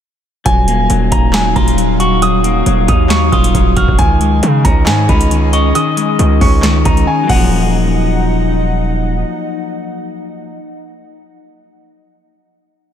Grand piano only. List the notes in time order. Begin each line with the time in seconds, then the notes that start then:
0.46 G#5
1.12 A#5
1.34 G#5
1.56 A#5
2.00 C#6
2.22 D#6
2.88 D#6
3.10 C#6
3.32 D#6
3.77 F6
3.99 G#5
4.65 A#5
4.87 G#5
5.09 B5
5.53 C#6
5.75 D#6
6.41 C#6
6.86 A#5
7.07 G#5
7.29 F#5